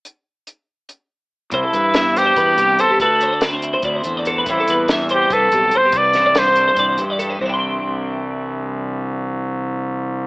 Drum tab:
HH |x-x-x--|xxxxxxx|xxxxxxx|xxxxxxx|
SD |-------|--oo---|--o----|--o----|
BD |-------|o---o--|o---o--|o---o--|

HH |xxxxxxx|-------|-------|
SD |-oo----|-------|-------|
BD |o---o--|-------|-------|